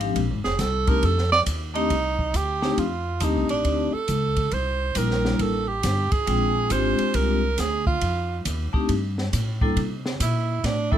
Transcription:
Already playing: G#1
0.00 F3 G#3 C4 D4 G4, ride
0.16 A#1, kick, ride
0.30 G#1
0.44 F1 G#4, snare
0.59 C2 A4, kick, snare, hi-hat pedal, ride
0.87 A3 C4 D4 D#4 G4 A#4, kick, ride
1.03 F2 A4, kick, ride
1.18 snare
1.32 D5, snare
1.46 D#2, kick, hi-hat pedal, ride
1.74 A3 C4 D4 D#4 G4, ride
1.90 C2, kick, ride
2.19 kick
2.34 D2 G4, kick, hi-hat pedal, ride
2.62 A3 C4 D4 D#4 G4, snare
2.78 F2 F4, kick, ride
3.20 D#2 A3 C4 D4 D#4 G4, kick, hi-hat pedal, ride
3.36 C2
3.49 A1 D4, ride
3.64 D2, kick, ride
3.93 A4, muted upright bass stroke
4.08 C#2, kick, hi-hat pedal, ride
4.36 kick, ride
4.51 C2 C5, kick, ride
4.95 A#1 G3 A#3 D4 E4 A#4, kick, hi-hat pedal, ride
5.11 snare
5.25 snare
5.39 A1 A4, kick, ride
5.68 G4
5.83 G1, kick, snare, hi-hat pedal, ride
6.12 G#4, muted upright bass stroke, kick, ride
6.26 A#1 G#3 C4 D4 F4 G5, kick, ride
6.70 G#1 G#3 C4 D4 F4 G4 C5, kick, hi-hat pedal, ride
6.98 muted upright bass stroke, ride
7.14 C2 A#4, kick, ride
7.58 D2 G#4, kick, snare, hi-hat pedal, ride
7.87 F4, kick
8.01 F2, kick, ride
8.45 D#2, kick, hi-hat pedal, ride
8.73 A3 C4 D4 D#4 G4, muted upright bass stroke, kick
8.89 G2, kick, ride
9.18 snare
9.33 A2, kick, hi-hat pedal, ride
9.61 G3 A#3 D4 E4 A4, kick
9.77 C3, kick, ride
10.06 snare
10.20 A#2 E4, kick, hi-hat pedal, ride
10.64 A2 D4, kick, snare, ride
10.92 G3 A#3 D4 E4 A4, kick

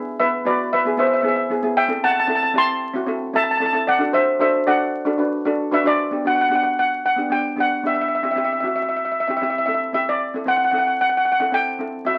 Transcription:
Already playing: B4 E5
0.20 B3 E4 B4 E5
0.45 B3 E4 F#4 B4 D5
0.73 B4 E5
0.85 B3 E4 G#4
0.97 B3 E4 B4 C5 E5
1.07 E5
1.14 E5
1.21 B3 E4 G#4 E5
1.28 E5
1.36 E5
1.50 B3 E4 G#4
1.63 B3 E4 G#4
1.77 E5 G5
1.88 C4 E4 A4
2.04 F#5 A5
2.12 A5
2.20 A5
2.27 C4 E4 A4 A5
2.35 A5
2.43 A5
2.54 C4 E4 G4
2.58 A5 C6
2.93 C4 E4 F#4
3.06 C4 E4 A4
3.33 C4 E4 A4 E5 A5
3.44 A5
3.51 A5
3.57 C4 E4 A5
3.62 A4
3.66 A5
3.73 C4 E4 A4 A5
3.87 D5 F#5
3.99 D4 F#4 A4
4.13 C5 E5
4.39 D4 F#4 A4 C5 E5
4.66 D4 F#4 A4 D5 F#5
5.05 D4 F#4 A4
5.18 D4 F#4 B4
5.45 D4 F#4 A4
5.71 D4 F#4 B4 E5
5.84 D4 F#4 C5 D5
6.11 B3 D4 G4
6.25 B3 D4 F#4 F#5
6.35 F#5
6.41 F#5
6.49 B3 D4 G4 F#5
6.55 F#5
6.63 F#5
6.79 F#5
7.06 F#5
7.16 B3 D4 G4
7.30 B3 D4 G4 G5
7.56 B3 D4 G4
7.60 F#5
7.83 B3 D4 G4 E5
7.95 E5
8.01 E5
8.08 E5
8.15 E5
8.23 C4 E4 G4 E5
8.31 E5
8.36 C4 E4 G4 E5
8.44 E5
8.53 E5
8.60 C4 E4 F#4 E5
8.68 E5
8.76 E5
8.82 E5
8.89 E5
8.96 E5
9.05 E5
9.12 E5
9.20 E5
9.27 C4 E4 G4 E5
9.37 E5
9.41 C4 E4 G4 E5
9.50 E5
9.58 E5
9.66 C4 E4 A4 E5
9.74 E5
9.93 C4 E4 G4 E5
10.09 D5
10.34 C4 E4 A4
10.46 C4 E4 C5 F#5
10.57 F#5
10.64 F#5
10.71 C4 E4 A4 F#5
10.78 F#5
10.87 F#5
11.01 F#5
11.10 F#5
11.17 F#5
11.25 F#5
11.32 F#5
11.40 C4 E4 A4 F#5
11.52 C4 E4 A4 G5
11.79 C4 E4 A4
12.05 C4 E4 F#4 E5
12.15 E5

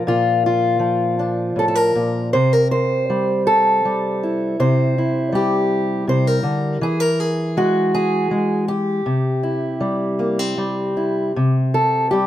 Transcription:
Already playing: F3 A#4
0.07 A#2 F4
0.46 F4
0.79 F3
1.19 D4
1.56 A2 A4
1.68 A4
1.75 A#4
1.95 A#2
2.33 C3 C5
2.53 A#4
2.71 C5
3.10 G3
3.47 A4
3.85 G3
4.23 E4
4.60 C3 C5
4.98 E4
5.32 G3 G4
6.07 C3 C5
6.27 A#4
6.43 D3
6.81 E3 G#4
7.00 A#4
7.20 G#4
7.57 G#3 F#4
7.95 G#4
8.31 G#3
8.68 G4
9.06 C3
9.43 E4
9.80 G3
10.19 A#3
10.39 C4
10.58 G3
10.97 E4
11.36 C3
11.74 A4
12.11 G3 G4

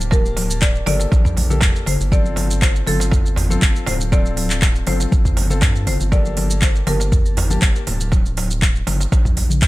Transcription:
Already playing: D1 C5
0.01 shaker
0.11 A#3 G4 A#4 A5, kick, darbuka tek, high conga, shaker
0.26 muted conga, shaker
0.37 open hi-hat, darbuka tek, high conga
0.50 muted conga, shaker
0.61 D5, kick, clap, darbuka ka, darbuka tek, shaker
0.75 shaker
0.86 G1 A#3 G4 A4 D5, open hi-hat, mid tom, muted conga, darbuka tek, high conga
1.00 darbuka ka, shaker
1.11 A#1, kick, muted conga, darbuka tek, high conga, shaker
1.25 kick, darbuka dum, shaker
1.37 open hi-hat, muted conga, darbuka tek, high conga, low conga
1.50 A#3 G4 A4, mid tom, shaker
1.61 F1, kick, clap, darbuka tek, high conga, darbuka dum, shaker
1.75 muted conga, shaker
1.86 G1 C5, open hi-hat, mid tom, darbuka tek
2.00 G1, muted conga, shaker
2.12 C4 F4 A4 D5, kick, darbuka tek, high conga, shaker
2.24 muted conga, shaker
2.36 open hi-hat, darbuka tek, high conga, low conga
2.49 muted conga, shaker
2.62 C5, kick, clap, darbuka ka, darbuka tek, shaker
2.76 shaker
2.87 G1 C4 F4 A4, open hi-hat, mid tom, muted conga, darbuka tek, high conga
3.00 darbuka ka, shaker
3.12 kick, darbuka tek, darbuka dum, shaker
3.26 shaker
3.36 open hi-hat, muted conga, darbuka ka, darbuka tek, darbuka dum, low conga
3.50 C4 F4 A4, high conga, shaker
3.62 G1, kick, clap, darbuka tek, shaker
3.75 muted conga, shaker
3.87 D1 C5, open hi-hat, darbuka tek, low conga
4.00 muted conga, shaker
4.12 C4 F4 A4 D5, kick, high conga, darbuka tek, shaker
4.25 muted conga, shaker
4.36 open hi-hat, high conga, darbuka tek
4.50 clap, muted conga, shaker
4.62 kick, clap, darbuka ka, darbuka tek, shaker
4.75 shaker
4.86 G1 C4 F4 A4 C5, open hi-hat, mid tom, muted conga, high conga, darbuka tek
5.00 darbuka ka, shaker
5.11 G1, kick, muted conga, high conga, darbuka tek, shaker
5.25 kick, darbuka dum, shaker
5.37 open hi-hat, muted conga, high conga, darbuka tek, low conga
5.50 C4 F4 A4, mid tom, shaker
5.62 G2, kick, clap, darbuka tek, high conga, darbuka dum, shaker
5.75 muted conga, shaker
5.87 G1 C5, open hi-hat, mid tom, darbuka tek
6.00 G1, muted conga, shaker
6.12 A#3 G4 A4 D5, kick, darbuka tek, high conga, shaker
6.25 muted conga, shaker
6.37 open hi-hat, darbuka tek, high conga, low conga
6.50 muted conga, shaker
6.62 C5, kick, clap, darbuka ka, darbuka tek, shaker
6.75 shaker
6.87 G1 A#3 G4 A#4 A5, open hi-hat, mid tom, muted conga, darbuka tek, high conga
7.00 darbuka ka, shaker
7.12 kick, darbuka tek, darbuka dum, shaker
7.26 shaker
7.37 open hi-hat, darbuka ka, muted conga, darbuka tek, darbuka dum, low conga
7.50 A#3 G4 A5, high conga, shaker
7.62 G1, kick, clap, darbuka tek, shaker
7.76 muted conga, shaker
7.87 D1, open hi-hat, darbuka tek, low conga
8.00 muted conga, shaker
8.12 kick, high conga, darbuka tek, shaker
8.25 muted conga, shaker
8.37 open hi-hat, high conga, darbuka tek
8.51 muted conga, shaker
8.62 kick, clap, darbuka ka, darbuka tek, shaker
8.76 shaker
8.87 G1, open hi-hat, mid tom, muted conga, high conga, darbuka tek
9.01 darbuka ka, shaker
9.12 A#1, kick, muted conga, high conga, darbuka tek, shaker
9.25 kick, darbuka dum, shaker
9.36 open hi-hat, muted conga, darbuka tek, high conga, low conga
9.50 mid tom, shaker
9.61 F1, kick, clap, high conga, darbuka tek, darbuka dum, shaker

